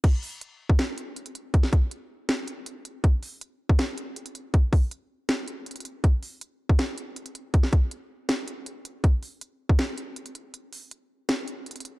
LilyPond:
\new DrumStaff \with { instrumentName = "Drums" } \drummode { \time 4/4 \tempo 4 = 160 <cymc hh bd>8 hho8 hh8. bd16 <hh sn>8 hh8 hh16 hh16 hh8 | <hh bd>16 sn16 <hh bd>8 hh4 <hh sn>8 hh8 hh8 hh8 | <hh bd>8 hho8 hh8. bd16 <hh sn>8 hh8 hh16 hh16 hh8 | <hh bd>8 <hho bd>8 hh4 <hh sn>8 hh8 hh32 hh32 hh32 hh32 hh8 |
<hh bd>8 hho8 hh8. bd16 <hh sn>8 hh8 hh16 hh16 hh8 | <hh bd>16 sn16 <hh bd>8 hh4 <hh sn>8 hh8 hh8 hh8 | <hh bd>8 hho8 hh8. bd16 <hh sn>8 hh8 hh16 hh16 hh8 | hh8 hho8 hh4 <hh sn>8 hh8 hh32 hh32 hh32 hh32 hh8 | }